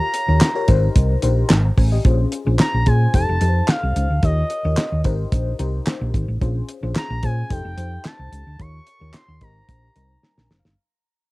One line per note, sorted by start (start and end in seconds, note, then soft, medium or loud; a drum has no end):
0.00 0.19 F4 medium
0.00 0.19 G4 medium
0.00 0.19 A#4 medium
0.00 0.20 C#5 medium
0.00 0.69 A#5 loud
0.14 closed hi-hat medium
0.28 0.37 D#2 medium
0.28 0.49 F4 medium
0.28 0.50 G4 medium
0.28 0.50 A#4 medium
0.28 0.50 C#5 medium
0.41 snare loud
0.41 clap medium
0.41 closed hi-hat loud
0.55 0.68 F4 medium
0.55 0.67 G4 medium
0.55 0.68 A#4 medium
0.55 0.68 C#5 loud
0.68 0.88 G#1 loud
0.68 1.13 D#4 loud
0.68 1.13 G4 medium
0.68 1.13 A#4 medium
0.68 1.13 C5 loud
0.68 kick loud
0.68 closed hi-hat medium
0.96 1.15 C2 loud
0.96 kick loud
0.96 closed hi-hat loud
1.22 1.42 A#1 medium
1.22 1.55 D#4 medium
1.22 1.50 G4 medium
1.22 1.50 A#4 medium
1.22 1.51 C5 loud
1.22 closed hi-hat medium
1.50 1.69 G#1 loud
1.50 snare loud
1.50 clap loud
1.50 closed hi-hat medium
1.65 1.77 A#5 medium
1.77 1.97 A1 loud
1.77 1.92 C5 medium
1.77 1.91 G#5 medium
1.77 kick medium
1.77 open hi-hat medium
1.92 2.18 G4 medium
1.92 2.18 D#5 medium
2.04 2.24 A#1 loud
2.04 2.37 C#4 medium
2.04 2.38 F4 medium
2.04 2.38 G#4 medium
2.04 2.38 C5 medium
2.04 kick loud
2.04 closed hi-hat medium
2.32 closed hi-hat medium
2.46 2.55 A#1 loud
2.46 2.78 C#4 medium
2.46 2.78 F4 medium
2.46 2.79 G#4 medium
2.46 2.79 C5 medium
2.59 2.89 A#5 loud
2.59 snare loud
2.59 clap loud
2.59 closed hi-hat medium
2.74 2.83 A#1 medium
2.86 3.06 A#2 loud
2.86 3.14 C#4 medium
2.86 3.14 F4 medium
2.86 3.14 G#4 medium
2.86 3.13 C5 medium
2.86 3.14 G#5 loud
2.86 kick loud
2.86 closed hi-hat medium
3.14 3.24 F1 loud
3.14 3.36 D#4 medium
3.14 3.36 G4 medium
3.14 3.36 A4 medium
3.14 3.36 C5 medium
3.14 3.71 A5 loud
3.14 kick loud
3.14 closed hi-hat loud
3.29 3.38 F1 medium
3.41 3.60 F2 loud
3.41 4.06 D#4 medium
3.41 4.07 G4 medium
3.41 4.07 A4 medium
3.41 3.48 B4 medium
3.41 closed hi-hat medium
3.48 4.10 C5 medium
3.68 4.23 F5 medium
3.68 snare loud
3.68 clap medium
3.68 closed hi-hat medium
3.83 3.92 C2 medium
3.96 4.06 C#2 loud
3.96 closed hi-hat medium
4.10 4.19 D2 medium
4.22 4.42 D#2 loud
4.22 4.55 F4 medium
4.22 4.56 G4 medium
4.22 4.56 A#4 medium
4.22 4.56 C#5 medium
4.22 5.01 D#5 loud
4.22 kick loud
4.22 closed hi-hat medium
4.50 closed hi-hat medium
4.64 4.74 D#2 loud
4.64 4.97 F4 medium
4.64 4.97 G4 medium
4.64 4.97 A#4 medium
4.64 4.97 C#5 medium
4.77 snare loud
4.77 clap medium
4.77 closed hi-hat medium
4.92 5.01 D#2 medium
5.04 5.24 G#1 loud
5.04 5.49 D#4 loud
5.04 5.49 G4 medium
5.04 5.49 A#4 medium
5.04 5.49 C5 loud
5.04 kick loud
5.04 closed hi-hat medium
5.32 5.51 A#1 loud
5.32 kick loud
5.32 closed hi-hat loud
5.59 5.78 C2 medium
5.59 6.25 D#4 medium
5.59 6.25 G4 medium
5.59 6.25 A#4 medium
5.59 6.25 C5 loud
5.59 closed hi-hat medium
5.87 snare loud
5.87 clap medium
5.87 closed hi-hat medium
6.01 6.10 A#1 medium
6.14 6.24 G#1 loud
6.14 kick medium
6.14 closed hi-hat medium
6.28 6.37 A1 medium
6.41 6.60 A#1 loud
6.41 6.74 C#4 medium
6.41 6.74 F4 medium
6.41 6.74 G#4 medium
6.41 6.74 C5 medium
6.41 kick loud
6.41 closed hi-hat medium
6.69 closed hi-hat medium
6.83 6.92 A#1 loud
6.83 7.15 C#4 medium
6.83 7.15 F4 medium
6.83 7.15 G#4 medium
6.83 7.15 C5 medium
6.96 7.26 A#5 medium
6.96 snare loud
6.96 clap medium
6.96 closed hi-hat medium
7.10 7.19 A#1 loud
7.23 7.42 A#2 loud
7.23 7.50 C#4 medium
7.23 7.50 F4 medium
7.23 7.50 G#4 medium
7.23 7.49 C5 medium
7.23 7.53 G#5 medium
7.23 kick medium
7.23 closed hi-hat medium
7.50 7.60 F1 loud
7.50 7.72 D#4 medium
7.50 7.72 G4 medium
7.50 7.72 A4 medium
7.50 7.73 C5 medium
7.50 8.08 G5 loud
7.50 kick loud
7.50 closed hi-hat loud
7.65 7.74 F1 medium
7.77 7.96 F2 medium
7.77 8.43 D#4 medium
7.77 8.43 G4 medium
7.77 8.43 A4 medium
7.77 8.43 C5 medium
7.77 closed hi-hat medium
8.05 8.62 A5 loud
8.05 snare loud
8.05 clap medium
8.05 closed hi-hat medium
8.19 8.28 C2 medium
8.32 8.42 C#2 medium
8.32 closed hi-hat medium
8.47 8.56 D2 medium
8.59 8.78 D#2 loud
8.59 8.92 F4 medium
8.59 8.92 G4 medium
8.59 8.92 A#4 medium
8.59 8.92 C#5 medium
8.59 9.17 C#6 loud
8.59 kick loud
8.59 closed hi-hat medium
8.87 closed hi-hat medium
9.00 9.10 D#2 medium
9.00 9.33 F4 medium
9.00 9.33 G4 medium
9.00 9.33 A#4 medium
9.00 9.33 C#5 medium
9.14 9.44 C6 loud
9.14 snare loud
9.14 clap medium
9.14 closed hi-hat loud
9.28 9.37 D#2 medium
9.41 9.60 G#1 loud
9.41 9.85 D#4 medium
9.41 9.85 G4 medium
9.41 9.86 A#4 medium
9.41 9.86 C5 loud
9.41 10.51 A#5 medium
9.41 kick loud
9.41 closed hi-hat medium
9.69 9.87 A#1 medium
9.69 kick loud
9.69 closed hi-hat loud
9.96 10.15 C2 loud
9.96 10.61 G3 medium
9.96 10.61 D#4 medium
9.96 10.61 A#4 medium
9.96 10.61 C5 medium
9.96 closed hi-hat medium
10.23 10.57 G#5 medium
10.23 snare medium
10.38 10.46 A#1 medium
10.38 snare medium
10.51 10.61 F#1 medium
10.51 snare medium
10.59 10.76 F5 medium
10.65 10.74 G1 loud
10.65 snare medium